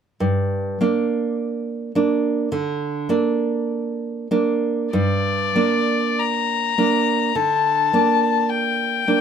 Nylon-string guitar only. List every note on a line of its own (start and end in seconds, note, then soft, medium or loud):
0.20 0.78 G2 soft
0.81 1.91 A#3 soft
0.81 1.91 D4 soft
1.95 2.48 A#3 soft
1.95 2.48 D4 soft
2.52 3.07 D3 soft
3.09 4.27 A#3 soft
3.09 4.27 D4 soft
4.31 4.89 A#3 soft
4.31 4.89 D4 soft
4.93 5.54 G2 soft
5.55 6.75 A#3 soft
5.55 6.75 D4 soft
6.78 7.31 A#3 soft
6.78 7.32 D4 soft
7.35 7.91 D3 soft
7.93 9.04 A#3 soft
7.93 9.04 D4 soft
9.08 9.21 A#3 soft
9.08 9.21 D4 soft